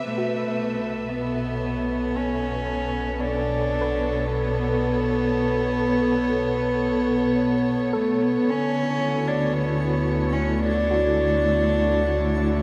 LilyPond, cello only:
\new Staff \with { instrumentName = "Cello" } { \time 4/4 \key b \dorian \tempo 4 = 57 a4 b4 cis'4 d'4 | b2.~ b8 a16 b16 | cis'8. d'16 b8. cis'16 d'2 | }